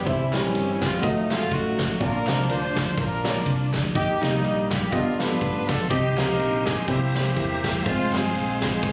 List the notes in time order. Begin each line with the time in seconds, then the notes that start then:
0.05 C2 E3 G3 C4 E4 C5, kick, ride
0.32 A#1 E3 G3 C#4 E4 A#4 C5, snare, clap, ride
0.55 G1, ride
0.81 F4, kick, snare, clap, ride
1.01 F1 F#3 A3 D#4 F4 F#4 D#5, kick, ride
1.30 G#3 F4 F#4 F5, snare, clap, ride
1.36 A3
1.51 A1 A3 D#4 F#4, kick, ride
1.79 kick, snare, clap, ride
2.00 A#1 A#2 A#3 D4 F4 A#4 D5, kick, ride
2.26 C2 A#3 D4 F4 C5, snare, clap, ride
2.49 D2 F4 C5, ride
2.76 kick, snare, clap, ride
2.97 A#1 D4 F4 A#4, kick, ride
3.24 A#3 D4 F4 C#5, snare, clap, ride
3.31 D5
3.46 C2, kick, ride
3.73 D2, kick, snare, clap, ride
3.95 D#2 D#3 A#3 D#4 G4 D#5, kick, ride
4.21 C2 G3 A#3 D#4 G4 D#5, snare, clap, ride
4.44 A#1, ride
4.71 G4, kick, snare, clap, ride
4.91 G1 G2 B3 D4 F4 G4 D#5, kick, ride
5.19 B3 D4 F4 G4 A4 B4, snare, clap, ride
5.41 A1, kick, ride
5.67 B1 A4, kick, snare, clap, ride
5.89 C2 C3 C4 D#4 G4 C5 D#5 C6, kick, ride
6.16 C#2 C4 D#4 G4 A#4 F5, snare, clap, ride
6.39 A#1, ride
6.65 G#4, kick, snare, clap, ride
6.87 C2 C3 A#3 E4 G4 C5 E5 A#5, kick, ride
7.15 A#3 E4 G4 C5, snare, clap, ride
7.35 E2 A#3 E4 G4, kick, ride
7.64 E1, kick, snare, clap, ride
7.84 F1 G#3 C4 F4 C5 F5 C6, kick, ride
8.12 G1 G3 C4 F4 G#4 G5, snare, clap, ride
8.20 G#3
8.35 A#1, ride
8.62 C4 F4 G#4, kick, snare, clap, ride
8.83 G#1, kick, ride